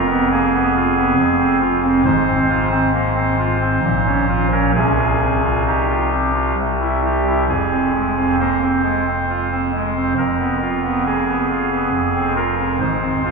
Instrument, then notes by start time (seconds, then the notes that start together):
pipe organ
Already playing: F1 F2 A#4
0.09 B3
0.31 A#3 G#4
0.53 B3
0.76 F4
0.96 B3
1.18 F1 F2
1.40 C4
1.61 F4
1.82 C4
2.05 G#1 G#2 C5
2.27 C4
2.49 F4
2.71 C4
2.93 A#3
3.15 C4
3.38 F4
3.61 C4
3.83 A#1 A#2
4.05 C#4
4.28 F4
4.51 C#4 A#4
4.75 C2 C3 G#4
4.98 F4
5.21 C4
5.44 F4
5.66 D#4 G4
5.89 F4
6.11 C4
6.34 F4
6.57 C2 C3
6.81 E4
7.05 G3 G4
7.27 E4
7.49 F1 F2 G#4
7.71 C4
7.94 G#3
8.17 C4
8.39 A#3 C5
8.62 C4
8.83 G#3
9.07 C4
9.30 F4
9.52 C4
9.74 G#3
9.96 C4
10.18 F1 F2 A#4
10.39 B3
10.62 F4
10.84 B3
11.06 A#3 G#4
11.29 B3
11.50 F4
11.71 B3
11.93 F1 F2
12.15 C4
12.36 F4 A#4
12.58 C4
12.80 G#1 G#2 C5
13.02 C4
13.25 F4